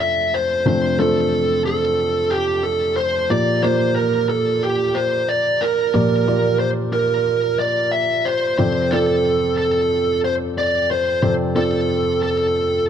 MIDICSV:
0, 0, Header, 1, 3, 480
1, 0, Start_track
1, 0, Key_signature, -1, "major"
1, 0, Tempo, 660066
1, 483, Time_signature, 4, 2, 24, 8
1, 9377, End_track
2, 0, Start_track
2, 0, Title_t, "Lead electric guitar"
2, 0, Program_c, 0, 29
2, 3, Note_on_c, 0, 76, 85
2, 249, Note_on_c, 0, 72, 86
2, 250, Note_off_c, 0, 76, 0
2, 469, Note_off_c, 0, 72, 0
2, 494, Note_on_c, 0, 72, 100
2, 722, Note_off_c, 0, 72, 0
2, 725, Note_on_c, 0, 69, 94
2, 1175, Note_off_c, 0, 69, 0
2, 1204, Note_on_c, 0, 69, 98
2, 1675, Note_on_c, 0, 67, 89
2, 1698, Note_off_c, 0, 69, 0
2, 1902, Note_off_c, 0, 67, 0
2, 1915, Note_on_c, 0, 69, 80
2, 2155, Note_off_c, 0, 69, 0
2, 2158, Note_on_c, 0, 72, 93
2, 2402, Note_on_c, 0, 74, 105
2, 2408, Note_off_c, 0, 72, 0
2, 2635, Note_on_c, 0, 72, 82
2, 2650, Note_off_c, 0, 74, 0
2, 2874, Note_off_c, 0, 72, 0
2, 2877, Note_on_c, 0, 70, 82
2, 3103, Note_off_c, 0, 70, 0
2, 3122, Note_on_c, 0, 69, 84
2, 3366, Note_on_c, 0, 67, 92
2, 3370, Note_off_c, 0, 69, 0
2, 3597, Note_on_c, 0, 72, 84
2, 3612, Note_off_c, 0, 67, 0
2, 3844, Note_on_c, 0, 74, 89
2, 3848, Note_off_c, 0, 72, 0
2, 4083, Note_on_c, 0, 70, 86
2, 4091, Note_off_c, 0, 74, 0
2, 4314, Note_off_c, 0, 70, 0
2, 4323, Note_on_c, 0, 70, 92
2, 4775, Note_off_c, 0, 70, 0
2, 4795, Note_on_c, 0, 72, 88
2, 4861, Note_off_c, 0, 72, 0
2, 5039, Note_on_c, 0, 70, 91
2, 5520, Note_off_c, 0, 70, 0
2, 5522, Note_on_c, 0, 74, 86
2, 5747, Note_off_c, 0, 74, 0
2, 5756, Note_on_c, 0, 76, 81
2, 6000, Note_on_c, 0, 72, 84
2, 6008, Note_off_c, 0, 76, 0
2, 6233, Note_off_c, 0, 72, 0
2, 6242, Note_on_c, 0, 72, 96
2, 6479, Note_on_c, 0, 69, 79
2, 6491, Note_off_c, 0, 72, 0
2, 6954, Note_off_c, 0, 69, 0
2, 6963, Note_on_c, 0, 69, 89
2, 7416, Note_off_c, 0, 69, 0
2, 7450, Note_on_c, 0, 72, 82
2, 7515, Note_off_c, 0, 72, 0
2, 7693, Note_on_c, 0, 74, 84
2, 7932, Note_off_c, 0, 74, 0
2, 7935, Note_on_c, 0, 72, 87
2, 8158, Note_off_c, 0, 72, 0
2, 8167, Note_on_c, 0, 72, 85
2, 8232, Note_off_c, 0, 72, 0
2, 8407, Note_on_c, 0, 69, 86
2, 8884, Note_off_c, 0, 69, 0
2, 8892, Note_on_c, 0, 69, 81
2, 9341, Note_off_c, 0, 69, 0
2, 9377, End_track
3, 0, Start_track
3, 0, Title_t, "Felt piano"
3, 0, Program_c, 1, 0
3, 0, Control_c, 1, 64, 127
3, 0, Note_on_c, 1, 41, 56
3, 0, Note_on_c, 1, 48, 57
3, 0, Note_on_c, 1, 57, 72
3, 0, Note_on_c, 1, 62, 65
3, 0, Note_on_c, 1, 65, 66
3, 0, Note_on_c, 1, 72, 77
3, 450, Note_off_c, 1, 41, 0
3, 450, Note_off_c, 1, 48, 0
3, 477, Note_off_c, 1, 57, 0
3, 477, Note_on_c, 1, 48, 55
3, 477, Note_on_c, 1, 57, 70
3, 479, Note_off_c, 1, 65, 0
3, 479, Note_on_c, 1, 41, 58
3, 479, Note_on_c, 1, 65, 64
3, 481, Note_off_c, 1, 62, 0
3, 481, Note_on_c, 1, 62, 61
3, 481, Note_on_c, 1, 69, 67
3, 699, Note_off_c, 1, 57, 0
3, 700, Note_off_c, 1, 65, 0
3, 701, Note_off_c, 1, 62, 0
3, 701, Note_off_c, 1, 69, 0
3, 717, Note_on_c, 1, 57, 76
3, 721, Note_off_c, 1, 72, 0
3, 721, Note_on_c, 1, 62, 67
3, 721, Note_on_c, 1, 72, 81
3, 722, Note_on_c, 1, 65, 63
3, 1597, Note_off_c, 1, 57, 0
3, 1599, Note_off_c, 1, 62, 0
3, 1599, Note_off_c, 1, 72, 0
3, 1600, Note_off_c, 1, 65, 0
3, 2371, Note_off_c, 1, 48, 0
3, 2372, Note_off_c, 1, 41, 0
3, 2400, Note_on_c, 1, 58, 64
3, 2400, Note_on_c, 1, 65, 65
3, 2403, Note_on_c, 1, 74, 81
3, 2404, Note_on_c, 1, 46, 60
3, 2406, Note_on_c, 1, 53, 54
3, 2406, Note_on_c, 1, 67, 61
3, 2414, Control_c, 1, 64, 0
3, 2549, Control_c, 1, 64, 127
3, 2621, Note_off_c, 1, 58, 0
3, 2621, Note_off_c, 1, 65, 0
3, 2623, Note_off_c, 1, 74, 0
3, 2624, Note_off_c, 1, 67, 0
3, 2637, Note_on_c, 1, 58, 77
3, 2641, Note_on_c, 1, 65, 69
3, 2642, Note_on_c, 1, 67, 66
3, 2642, Note_on_c, 1, 74, 77
3, 3518, Note_off_c, 1, 58, 0
3, 3520, Note_off_c, 1, 65, 0
3, 3520, Note_off_c, 1, 67, 0
3, 3520, Note_off_c, 1, 74, 0
3, 4295, Note_off_c, 1, 46, 0
3, 4296, Note_off_c, 1, 53, 0
3, 4319, Note_on_c, 1, 58, 70
3, 4321, Note_on_c, 1, 65, 64
3, 4322, Note_on_c, 1, 53, 60
3, 4322, Note_on_c, 1, 74, 78
3, 4323, Note_on_c, 1, 46, 59
3, 4323, Note_on_c, 1, 67, 56
3, 4541, Note_off_c, 1, 58, 0
3, 4542, Note_off_c, 1, 65, 0
3, 4542, Note_off_c, 1, 74, 0
3, 4543, Note_off_c, 1, 67, 0
3, 4560, Note_on_c, 1, 58, 68
3, 4563, Note_on_c, 1, 65, 69
3, 4565, Note_on_c, 1, 67, 68
3, 4565, Note_on_c, 1, 74, 78
3, 5440, Note_off_c, 1, 58, 0
3, 5442, Note_off_c, 1, 65, 0
3, 5443, Note_off_c, 1, 67, 0
3, 5443, Note_off_c, 1, 74, 0
3, 6216, Note_off_c, 1, 46, 0
3, 6216, Note_off_c, 1, 53, 0
3, 6243, Note_on_c, 1, 60, 66
3, 6244, Note_on_c, 1, 65, 63
3, 6248, Note_on_c, 1, 41, 60
3, 6248, Note_on_c, 1, 74, 77
3, 6249, Note_on_c, 1, 69, 60
3, 6250, Note_on_c, 1, 48, 53
3, 6254, Control_c, 1, 64, 0
3, 6380, Control_c, 1, 64, 127
3, 6464, Note_off_c, 1, 60, 0
3, 6464, Note_off_c, 1, 65, 0
3, 6466, Note_off_c, 1, 74, 0
3, 6467, Note_off_c, 1, 69, 0
3, 6489, Note_on_c, 1, 65, 61
3, 6490, Note_on_c, 1, 60, 75
3, 6490, Note_on_c, 1, 74, 80
3, 6491, Note_on_c, 1, 69, 64
3, 7366, Note_off_c, 1, 60, 0
3, 7366, Note_off_c, 1, 65, 0
3, 7366, Note_off_c, 1, 74, 0
3, 7367, Note_off_c, 1, 69, 0
3, 8139, Note_off_c, 1, 41, 0
3, 8140, Note_off_c, 1, 48, 0
3, 8162, Note_on_c, 1, 48, 60
3, 8162, Note_on_c, 1, 60, 69
3, 8164, Note_on_c, 1, 41, 60
3, 8164, Note_on_c, 1, 65, 64
3, 8166, Note_on_c, 1, 74, 68
3, 8168, Note_on_c, 1, 69, 65
3, 8384, Note_off_c, 1, 60, 0
3, 8385, Note_off_c, 1, 65, 0
3, 8386, Note_off_c, 1, 74, 0
3, 8387, Note_off_c, 1, 69, 0
3, 8403, Note_on_c, 1, 60, 74
3, 8404, Note_on_c, 1, 65, 67
3, 8405, Note_on_c, 1, 69, 66
3, 8410, Note_on_c, 1, 74, 75
3, 9283, Note_off_c, 1, 60, 0
3, 9283, Note_off_c, 1, 65, 0
3, 9284, Note_off_c, 1, 69, 0
3, 9286, Note_off_c, 1, 74, 0
3, 9377, Note_off_c, 1, 41, 0
3, 9377, Note_off_c, 1, 48, 0
3, 9377, End_track
0, 0, End_of_file